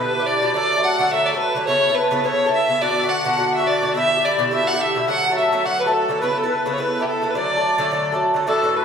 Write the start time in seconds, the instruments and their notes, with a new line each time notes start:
Already playing: bouzouki B2 D3
0.00 bouzouki E4 G4, accordion B4, fiddle B4
0.19 bouzouki D3 E4 G4
0.26 fiddle D5, accordion D5
0.41 bouzouki B2 D3 E4 G4
0.54 bouzouki D3 F#3 A3 A4, fiddle D5, accordion D5
0.76 bouzouki F#3 A3 A4
0.83 accordion F#5, fiddle F#5
0.99 bouzouki D3 F#3 A3 A4
1.11 bouzouki D3 F#3 A3 A4, fiddle E5, accordion E5
1.26 fiddle D5
1.34 bouzouki F#3 A3 A4
1.39 fiddle B4, accordion B4
1.55 bouzouki D3 F#3 A3 A4
1.67 bouzouki C#3 B3 E4 A4, fiddle C#5, accordion C#5
1.89 bouzouki B3 E4 A4
1.95 fiddle B4, accordion B4
2.11 bouzouki C#3 B3 E4 A4
2.24 bouzouki C#3 B3 E4 A4, fiddle C#5, accordion C#5
2.46 bouzouki B3 E4 A4
2.53 accordion E5, fiddle E5
2.68 bouzouki C#3 B3 E4 A4, accordion E5
2.81 bouzouki B2 D3 D4 F#4, accordion D5, fiddle D5
2.98 accordion E5
3.03 bouzouki D3 D4 F#4
3.09 fiddle F#5, accordion F#5
3.25 bouzouki B2 D3 D4 F#4
3.38 bouzouki B2 D3 D4 F#4
3.54 accordion E5, fiddle E5
3.59 bouzouki D3 D4 F#4
3.65 accordion D5, fiddle D5
3.81 bouzouki B2 D3 D4 F#4
3.94 bouzouki B2 D3 E4 G4, accordion E5, fiddle E5
4.16 bouzouki D3 E4 G4
4.23 accordion D5, fiddle D5
4.38 bouzouki B2 D3 E4 G4
4.51 bouzouki B2 D3 E4 G4, accordion E5, fiddle E5
4.67 fiddle F#5, accordion F#5
4.73 bouzouki D3 E4 G4
4.80 accordion E5, fiddle E5
4.95 bouzouki B2 D3 E4 G4
5.07 bouzouki D3 F#3 A3 A4, accordion F#5, fiddle F#5
5.30 bouzouki F#3 A3 A4
5.36 accordion E5, fiddle E5
5.52 bouzouki D3 F#3 A3 A4
5.64 bouzouki D3 F#3 A3 A4, accordion F#5, fiddle F#5
5.79 accordion B4, fiddle B4
5.86 bouzouki F#3 A3 A4
5.92 accordion A4, fiddle A4
6.09 bouzouki D3 F#3 A3 A4
6.20 bouzouki C#3 B3 E4 A4, accordion B4, fiddle B4
6.36 accordion A4, fiddle A4
6.44 bouzouki B3 E4 A4
6.49 accordion B4, fiddle B4
6.66 bouzouki C#3 B3 E4 A4
6.71 accordion C#5, fiddle C#5
6.78 bouzouki C#3 B3 E4 A4, accordion B4, fiddle B4
7.00 bouzouki B3 E4 A4, accordion G4, fiddle G4
7.07 accordion A4, fiddle A4
7.22 bouzouki C#3 B3 E4 A4
7.28 accordion B4, fiddle B4
7.35 bouzouki D3 F#3 A3 A4, accordion D5, fiddle D5
7.56 bouzouki F#3 A3 A4
7.78 bouzouki D3 F#3 A3 A4
7.91 bouzouki D3 F#3 A3 A4
8.12 bouzouki F#3 A3 A4
8.34 bouzouki D3 F#3 A3 A4
8.47 bouzouki A2 E3 D4 F#4, fiddle A4, accordion A4
8.62 bouzouki A2 E3 D4 F#4
8.76 fiddle B4, accordion B4